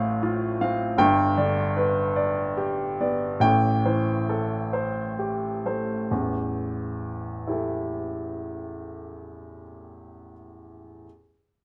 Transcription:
0.00 0.93 A1 medium
0.00 0.94 A2 medium
0.00 1.00 A3 medium
0.00 0.61 C4 medium
0.00 1.01 C5 medium
0.00 0.61 F5 medium
0.23 0.83 F4 medium
0.61 0.99 C4 medium
0.61 0.99 F5 medium
0.97 3.37 G1 medium
0.97 3.38 G2 medium
0.97 1.60 G5 loud
1.37 2.00 D3 medium
1.37 2.00 D5 medium
1.77 2.41 B4 medium
2.16 2.82 D5 medium
2.57 3.25 G4 medium
3.00 3.43 B3 medium
3.00 3.43 D5 medium
3.40 6.05 A1 medium
3.40 6.06 A2 medium
3.40 4.11 G5 medium
3.85 4.56 E3 soft
3.85 4.56 C5 medium
4.29 5.01 A4 medium
4.73 5.46 C5 medium
5.19 5.92 G4 medium
5.66 6.11 A3 soft
5.66 6.11 C5 medium
6.11 9.61 A1 soft
6.11 9.61 E2 medium
7.47 10.30 E4 soft
7.47 10.31 G4 soft
7.47 10.32 A4 soft

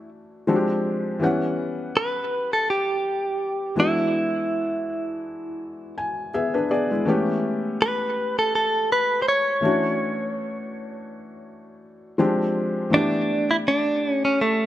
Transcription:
0.00 0.43 E3 medium
0.00 0.44 A3 medium
0.00 0.44 C#4 medium
0.00 0.45 D4 medium
0.00 0.45 F#4 medium
0.47 1.21 F3 medium
0.47 1.21 G#3 medium
0.47 1.22 C4 medium
0.47 1.22 D4 medium
0.47 0.56 F#4 medium
0.56 1.25 G4 medium
1.19 3.73 E3 medium
1.19 3.73 G3 medium
1.19 3.74 B3 medium
1.19 3.74 C#4 medium
1.23 3.75 F#5 medium
1.97 2.53 B4 loud
2.53 2.68 A4 medium
2.70 3.79 G4 loud
3.76 6.65 E3 medium
3.76 6.29 G#3 medium
3.76 6.30 B3 medium
3.76 6.30 D4 medium
3.80 5.94 E4 medium
3.80 6.31 F#4 medium
5.98 6.31 G#5 medium
6.34 6.53 B3 medium
6.34 6.53 G#4 medium
6.34 6.68 E5 medium
6.54 6.70 D4 medium
6.54 6.70 B4 medium
6.71 6.90 B3 medium
6.71 6.89 G#4 medium
6.71 7.05 D5 medium
6.91 7.26 G#3 medium
6.91 7.25 E4 medium
7.05 9.58 E3 medium
7.05 9.59 A3 medium
7.05 9.59 B3 medium
7.05 9.60 C#4 medium
7.09 9.60 G4 medium
7.82 8.38 B4 medium
8.39 8.54 A4 medium
8.55 8.92 A4 medium
8.92 9.22 B4 medium
9.22 9.28 C5 medium
9.28 12.16 C#5 medium
9.61 12.14 E3 medium
9.61 12.15 A3 medium
9.61 12.15 C#4 medium
9.61 12.16 D4 medium
9.65 12.16 F#4 medium
12.18 12.92 F3 medium
12.18 12.92 G#3 medium
12.18 12.92 C4 medium
12.18 12.92 D4 medium
12.18 12.93 G4 medium
12.90 14.66 E3 medium
12.90 14.66 A3 medium
12.90 14.66 B3 medium
12.90 14.66 D4 medium
12.94 13.51 D4 loud
12.94 14.66 G4 medium
13.51 13.56 E4 loud
13.68 14.09 D4 loud
14.09 14.24 C#4 loud
14.25 14.39 C#4 loud
14.41 14.66 A3 loud

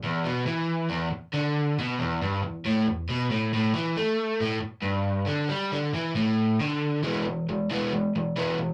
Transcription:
0.04 0.25 E2 loud
0.25 0.46 B2 loud
0.46 0.90 E3 loud
0.90 1.10 E2 loud
1.11 muted overdriven electric guitar stroke medium
1.34 1.77 D3 loud
1.79 2.00 B2 loud
1.99 2.21 E2 loud
2.22 2.42 G2 loud
2.43 2.61 E2 medium
2.65 2.87 A2 loud
2.87 3.05 E2 medium
3.10 3.30 B2 loud
3.31 3.52 A2 loud
3.53 3.74 A2 loud
3.74 3.96 E3 loud
3.97 4.40 A3 loud
4.40 4.60 A2 loud
4.61 muted overdriven electric guitar stroke medium
4.82 5.27 G2 medium
5.26 5.49 D3 loud
5.49 5.71 G3 loud
5.72 5.93 D3 loud
5.94 6.15 E3 loud
6.16 6.59 A2 loud
6.59 7.02 D3 loud
7.03 7.24 E3 loud
7.03 7.24 G#3 loud
7.03 7.25 B3 medium
7.26 7.46 E3 medium
7.26 7.46 G#3 medium
7.49 7.68 E3 medium
7.49 7.69 G#3 medium
7.70 7.91 E3 medium
7.70 7.91 G#3 medium
7.70 7.92 B3 medium
7.93 8.12 E3 medium
7.93 8.12 G#3 medium
8.15 8.35 E3 medium
8.15 8.35 G#3 medium
8.36 8.57 E3 medium
8.36 8.57 G#3 medium
8.36 8.57 B3 loud
8.58 8.74 E3 medium
8.58 8.74 G#3 medium

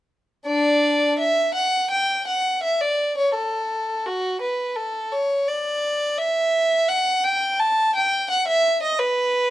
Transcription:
0.46 1.15 D4 medium
0.46 1.15 D5 medium
1.19 1.54 E5 medium
1.54 1.89 F#5 medium
1.90 2.26 G5 medium
2.27 2.63 F#5 medium
2.63 2.81 E5 medium
2.81 3.17 D5 medium
3.17 3.34 C#5 medium
3.35 4.05 A4 medium
4.06 4.41 F#4 medium
4.41 4.76 B4 medium
4.76 5.12 A4 medium
5.12 5.48 C#5 medium
5.48 6.18 D5 medium
6.18 6.89 E5 medium
6.88 7.24 F#5 medium
7.24 7.59 G5 medium
7.59 7.95 A5 medium
7.95 8.29 G5 medium
8.30 8.47 F#5 medium
8.47 8.82 E5 medium
8.82 8.99 D#5 medium
8.99 9.50 B4 medium

